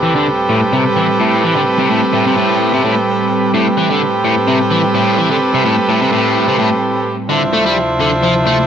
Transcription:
Already playing: A2 G3 C4 G4 A4 B4
0.03 E3
0.15 D3
0.50 A2
0.73 C3
0.96 E3
1.20 A2
1.43 E3
1.56 D3
1.79 C3
1.90 A2
2.13 A2
2.26 C3
2.37 A2
2.73 C3
2.84 A2
3.54 A2 C4 G4 A4 B4
3.78 E3
3.91 D3
4.25 A2
4.48 C3
4.71 E3
4.95 A2
5.18 E3
5.31 D3
5.54 C3
5.65 A2
5.89 A2
6.01 C3
6.12 A2
6.48 C3
6.59 A2
7.29 D2 C3 D3 F3 D4 E4 F4 C5 E5
7.53 A3
7.66 G3
8.00 D3
8.23 F3
8.46 A3

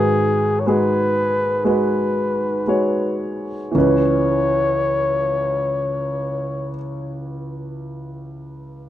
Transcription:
Already playing: G#2 D#3 G#3 F#4 G#4 B4
0.60 C#5
0.66 G#3 F#4 G#4 B4
1.65 G#3 F#4 B4
2.67 G#3 F#4 C#5
3.72 C#2 E3 C#4
3.76 B4 C#5

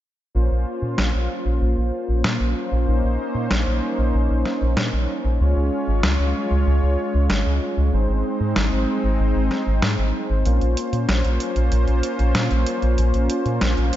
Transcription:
0.35 A#1 A#3 C#4 F4 C5
0.51 A#1
0.82 A#2
0.98 A#1, snare
1.14 A#1
1.45 A#1
1.61 A#1
1.77 A#1
2.08 A#1
2.24 A#2, snare
2.40 A#1
2.72 A#1
2.87 A#1 D#4
3.03 A#1
3.35 A#2
3.50 A#1, snare
3.66 A#1
3.98 A#1
4.14 A#1
4.30 A#1
4.46 snare
4.61 A#1
4.77 A#2, snare
4.93 A#1
5.24 A#1
5.40 C#2 G#3 F4 C#5
5.56 C#2
5.87 G#1
6.03 C#2, snare
6.19 C#2
6.51 C#2
6.67 C#2
6.82 C#2
7.14 C#2
7.30 G#1, snare
7.46 C#2
7.77 C#2
7.93 G#1 C4 D#4 C5
8.09 G#1
8.40 G#2
8.56 G#1, snare
8.72 G#1
9.04 G#1
9.19 G#1
9.35 G#1
9.51 snare
9.67 G#1
9.82 G#2, snare
9.98 G#1
10.30 G#1
10.45 A#1 A#3 C#4 F4, closed hi-hat
10.61 A#1, closed hi-hat
10.77 closed hi-hat
10.93 A#2, closed hi-hat
11.08 A#1, snare, closed hi-hat
11.24 A#1, closed hi-hat
11.40 closed hi-hat
11.56 A#1, closed hi-hat
11.72 A#1, closed hi-hat
11.87 A#1, closed hi-hat
12.03 closed hi-hat
12.19 A#1, closed hi-hat
12.35 A#2, snare, closed hi-hat
12.51 A#1, closed hi-hat
12.67 closed hi-hat
12.82 A#1, closed hi-hat
12.98 A#1, closed hi-hat
13.14 A#1, closed hi-hat
13.30 closed hi-hat
13.46 A#2, closed hi-hat
13.61 A#1, snare, closed hi-hat
13.77 A#1, closed hi-hat
13.93 closed hi-hat

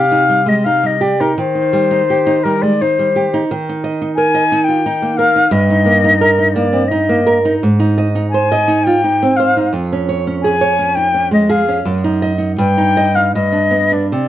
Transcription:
Already playing: C3 G4 F5
0.11 D#4
0.29 G3
0.46 G#3 D#5
0.64 D#4 F5
0.83 G3 D#5
1.01 G4 D5
1.20 D#4 A#4
1.38 D#3 C5
1.55 D#4
1.73 G3
1.91 D#4
2.10 G4
2.27 D#4
2.43 G3 A#4
2.62 G#3 D5
2.81 D#4 C5
2.99 G3
3.16 G4
3.34 D#4
3.51 D#3
3.69 D#4
3.84 D#5
4.02 D#4
4.15 A#4 G#5
4.34 D#5
4.52 D#4
4.64 G5
4.68 F4
4.86 D#4
5.02 A#3
5.17 A#4 F5
5.36 D#4
5.51 G2 D#5
5.70 D#4
5.86 A#3
6.04 D#4
6.21 A#4
6.38 D#4
6.54 A#3 D5
6.73 C4
6.87 D#4 D#5
7.09 A#3
7.27 A#4
7.45 D#4
7.63 G#2
7.80 D#4
7.98 D#5
8.15 D#4
8.30 G#5
8.34 C5
8.52 D#5
8.68 D#4
8.84 F4 G5
9.04 D#4
9.23 C4
9.36 C5 F5
9.57 D#4
9.73 F2
9.92 C#4
10.09 C#5
10.27 C#4
10.42 G#4 G#5
10.61 C#5
10.79 C#4
10.95 D#4 G5
11.14 C#4
11.31 G#3 D#5
11.50 G#4 F5
11.68 C#4
11.85 F#2
12.04 D#4
12.22 D#5
12.38 D#4
12.58 G2 G5
12.78 D#4
12.97 D#5
13.15 D#4 F5
13.34 G2 D#5
13.52 D4
13.71 B3
13.92 D4 D5
14.11 C3 D5

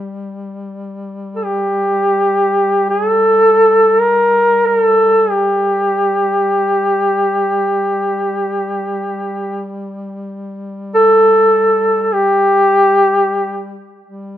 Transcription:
Already playing: G3
1.36 A4
1.44 G4
2.90 G#4
3.08 A4
4.00 A#4
4.66 A#4
4.79 A4
5.30 G4
10.94 A4
12.02 A4
12.13 G4
14.06 G3

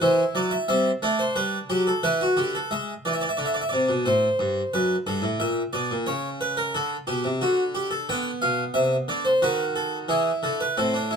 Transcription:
0.02 E3 E4 C5
0.35 F#3 D5
0.51 E5
0.68 G3 C4 E5
1.02 A3 D4 D5
1.19 C5
1.36 G3 B4
1.70 F#3 G4
1.87 A4
2.03 E3 E4 B4
2.21 F#4
2.37 D3 G4
2.55 A4
2.71 G#3 E5
3.05 E3 D5
3.13 E5
3.21 D5
3.29 E5
3.37 D3 D5
3.46 E5
3.54 D5
3.61 E5
3.69 C3 D5
3.89 B2
4.06 A2 C5
4.39 G2
4.73 F#2 B4
5.07 G2 A4
5.22 A2
5.40 A#2 E5
5.73 B2 D5
5.91 A#2
6.06 C#3 C#5
6.41 B4
6.57 A#4
6.75 D3 A4
7.07 B2 G4
7.24 C3
7.41 D3 F#4
7.75 G4
7.91 A4
8.09 D3 B3 G5
8.42 B2 F5
8.74 C3 E5
9.08 D3 D5
9.25 C5
9.42 D#3 F#4 B4
9.76 A4
10.08 E3 E4 G#4
10.43 D3 A4
10.60 B4
10.77 A2 C4 A4
10.94 D4
11.11 E4

